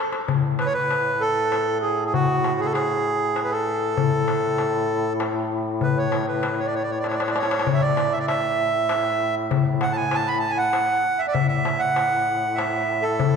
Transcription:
0.12 darbuka ka
0.28 A2, darbuka dum
0.59 B4, darbuka tek
0.66 C#5
0.73 B4
0.91 darbuka tek
1.20 A4
1.52 darbuka tek
1.82 G#4, darbuka ka
2.06 G#4
2.13 F#4, darbuka dum
2.44 darbuka tek
2.60 G#4
2.65 A4
2.72 G#4, darbuka tek
3.36 darbuka tek
3.44 B4
3.51 A4
3.67 darbuka ka
3.97 A2, darbuka dum
4.28 darbuka tek
4.58 darbuka tek
5.20 darbuka tek
5.51 darbuka ka
5.81 B4, darbuka dum
5.98 C#5
6.12 darbuka tek
6.28 B4
6.43 darbuka tek
6.58 C#5
6.66 D5
6.74 C#5, darbuka ka
6.83 D5
6.91 C#5
6.99 D5
7.04 C#5, darbuka tek
7.11 D5, darbuka ka
7.20 C#5, darbuka tek
7.28 D5, darbuka ka
7.36 C#5, darbuka tek
7.43 darbuka ka
7.51 darbuka tek
7.59 darbuka ka
7.67 A2, darbuka dum
7.74 E5
7.81 D5
7.97 darbuka tek
8.12 E5
8.19 D5
8.27 E5, darbuka tek
8.89 darbuka tek
9.20 darbuka ka
9.51 darbuka dum
9.81 F#5, darbuka tek
9.92 A5
9.96 G#5
10.11 A5, darbuka tek
10.28 B5
10.40 A5
10.51 G#5
10.58 F#5
10.73 darbuka tek
11.04 darbuka ka
11.19 E5
11.28 D5
11.32 A2 E5, darbuka dum
11.48 E5
11.65 darbuka tek
11.79 F#5
11.96 darbuka tek
12.55 E5, darbuka tek
12.89 darbuka ka
13.02 A4
13.20 darbuka dum

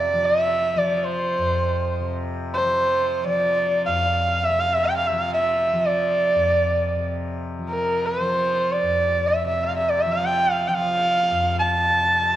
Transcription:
Already playing: F2 C3 F3 D5
0.13 F3
0.25 E5
0.75 F3 D5
0.97 D5
1.05 C5
1.38 F2
2.00 C3
2.54 C5
2.62 F3
3.25 F3 D5
3.86 F2 F5
4.45 E5
4.49 C3
4.60 F5
4.74 E5
4.85 G5
4.97 F5
5.07 F3 E5
5.20 F5
5.34 E5
5.73 F3
5.86 D5
6.35 F2
6.96 C3
7.59 F3
7.69 A#4
8.06 C5
8.20 F3
8.72 D5
8.82 F2
9.28 E5
9.44 C3 E5
9.64 F5
9.77 E5
9.89 D5
10.01 E5
10.06 F3
10.13 F5
10.26 G5
10.53 F5
10.68 F3 G5
10.74 F5
11.31 F2
11.60 A5
11.92 C3

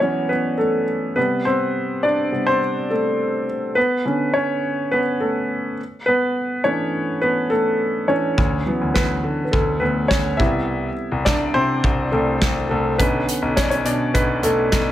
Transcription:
Already playing: B3 C#4 B4 D5
0.00 E3 F#3 B3 C#4 C#5
0.29 B3 B4
0.58 A3 A4
1.16 C3 G3 B3 B4
1.45 C4 C5
2.03 D4 D5
2.32 C3 G3 B3
2.47 C4 C5
2.90 A3 A4
3.75 B3 B4
4.05 D3 B3 C#4
4.34 C#4 C#5
4.91 B3 B4
5.20 A3 A4
6.06 B3 B4
6.64 E3 A3 C#4 D4 C#5
7.21 B3 B4
7.50 A3 A4
8.08 E3 A3 C#4 D4 C#5
8.38 D2, kick
8.66 E3 F#3 B3
8.81 D2
8.94 D2 B3 B4, kick, snare
9.24 D3
9.45 B4
9.51 D2 A3 A4, kick
9.80 D2 B3 B4
10.08 C#4 C#5, kick, snare
10.37 C2 C3 G3 B3 E4 E5, kick
11.12 C2
11.25 C2 D4 D5, kick, snare
11.54 C3 C4 C5
11.84 C2, kick
12.12 C2 A3 A4
12.42 C2, kick, snare
12.69 C2 A3 A4
12.98 B1 D3 B3 C#4 B4, kick, closed hi-hat
13.29 closed hi-hat
13.42 B1
13.57 B1 C#4 C#5, kick, snare, closed hi-hat
13.63 D5
13.70 C#4 C#5, closed hi-hat
13.85 B2 D4 D5, closed hi-hat
14.14 B1 B3 B4, kick, closed hi-hat
14.43 B1 A3 A4, closed hi-hat
14.72 B1, kick, snare, closed hi-hat

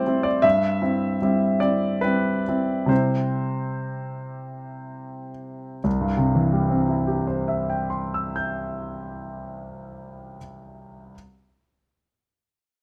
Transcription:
Already playing: A2 G3 C4 E4 C5 D5 G5
0.07 C4 E4
0.23 D5
0.42 G2 E5
0.82 C4 E4
1.22 G3 C4 E4
1.60 C4 E4 D5
2.01 G3 C4 E4 B4
2.48 C4 E4
2.86 C3 G3 C4 E4 C5
5.84 C2
6.01 G2
6.17 C3
6.35 E3
6.53 G3
6.70 C4
6.88 E4
7.07 G4
7.27 C5
7.48 E5
7.70 G5
7.90 C6
8.14 E6
8.36 G6

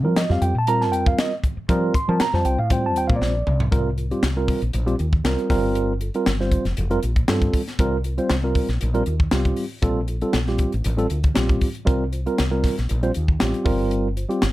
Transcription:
0.04 F3 G3 C4 F4 A#4
0.16 D#5, snare, closed hi-hat
0.29 F2 G3 C4 F4 G4 F5, snare
0.42 F2 G5, closed hi-hat
0.55 A#2 A5
0.67 G3 C4 F4 A#4 A#5, closed hi-hat
0.81 A5, snare
0.92 F2 G5, closed hi-hat
1.06 F5, kick
1.18 D#5, snare, closed hi-hat
1.44 kick, closed hi-hat
1.57 muted fretless electric bass stroke
1.69 F3 G3 C4 F4 A#4, kick, closed hi-hat
1.94 C6, kick, closed hi-hat
2.08 F3 G3 C4 F4 A#4 A5
2.20 A#5, muted fretless electric bass stroke, snare, closed hi-hat
2.33 F2 G3 C4 F4 C5 A5, snare
2.45 C2 G5, closed hi-hat
2.58 A2 F5
2.70 G3 C4 F4 C5 G5, kick, closed hi-hat
2.86 A5
2.96 D#2 G5, closed hi-hat
3.07 A#2 F5, kick
3.16 D5
3.21 A#1, snare
3.47 C2, mid tom
3.60 floor tom
3.72 C2 G3 C4 F4 A#4, kick, closed hi-hat
3.97 F4 A#4, closed hi-hat
4.11 G3 C4 F4 G4, closed hi-hat
4.23 C2, snare, closed hi-hat
4.37 G3 C4 F4 A#4
4.48 kick, open hi-hat
4.62 A#1, closed hi-hat
4.73 A#1 F4 C5, closed hi-hat
4.86 G3 C4 F4 G4, closed hi-hat
4.99 D#2, closed hi-hat
5.13 kick
5.24 C2 G3 C4 F4 A#4, snare, closed hi-hat
5.38 closed hi-hat
5.50 G1 G3 C4 F4 A#4, kick, snare, open hi-hat
5.75 closed hi-hat
6.00 F4 A4, closed hi-hat
6.14 G3 C4 F4 A#4, closed hi-hat
6.26 G1, snare, closed hi-hat
6.40 G3 C4 F4 C5, snare
6.51 kick, closed hi-hat
6.65 F1, snare, closed hi-hat
6.77 F1 F4 A4, closed hi-hat
6.90 G3 C4 F4 A#4, closed hi-hat
7.03 A#1 G4, closed hi-hat
7.16 kick, closed hi-hat
7.28 G2 G3 C4 F4 A4, snare, closed hi-hat
7.42 kick, closed hi-hat
7.54 kick, open hi-hat
7.68 snare, closed hi-hat
7.79 C2 G3 C4 F4 A#4, kick, closed hi-hat
8.04 F4 A#4, closed hi-hat
8.18 G3 C4 F4 C5, closed hi-hat
8.29 C2, snare, closed hi-hat
8.43 G3 C4 F4 A#4
8.55 kick, open hi-hat
8.69 A#1, snare, closed hi-hat
8.80 A#1 F4 A#4, closed hi-hat
8.94 G3 C4 F4 A#4, closed hi-hat
9.06 D#2, closed hi-hat
9.20 kick
9.31 C2 G3 C4 F4 G4, snare, closed hi-hat
9.45 kick, closed hi-hat
9.57 open hi-hat
9.82 A#1 G3 C4 F4 A4, kick, closed hi-hat
10.08 F4 A4, closed hi-hat
10.21 G3 C4 F4 A4, closed hi-hat
10.33 A#1, snare, closed hi-hat
10.47 G3 C4 F4 G4, snare
10.58 kick, closed hi-hat
10.72 A1, closed hi-hat
10.84 A1 F4 A#4, closed hi-hat
10.97 G3 C4 F4 A4, closed hi-hat
11.10 D2 F4 A#4, closed hi-hat
11.24 kick, closed hi-hat
11.34 A#1 G3 C4 F4 G4, snare, closed hi-hat
11.49 kick, closed hi-hat
11.61 kick, open hi-hat
11.75 closed hi-hat
11.85 C2 G3 C4 F4 A#4, kick, closed hi-hat
12.12 F4 C5, closed hi-hat
12.26 G3 C4 F4 A#4, closed hi-hat
12.38 C2, snare, closed hi-hat
12.51 G3 C4 F4 A#4
12.64 kick, snare, open hi-hat
12.78 A#1, snare, closed hi-hat
12.89 A#1 F4 A#4, closed hi-hat
13.03 G3 C4 F4 C5, closed hi-hat
13.14 D#2, closed hi-hat
13.28 kick
13.39 A1 G3 C4 F4 G4, snare, closed hi-hat
13.54 closed hi-hat
13.65 G1 G3 C4 F4 A#4, kick, open hi-hat
13.91 closed hi-hat
14.16 F4 C5, closed hi-hat
14.29 G3 C4 F4 G4, closed hi-hat
14.42 G1, snare, closed hi-hat

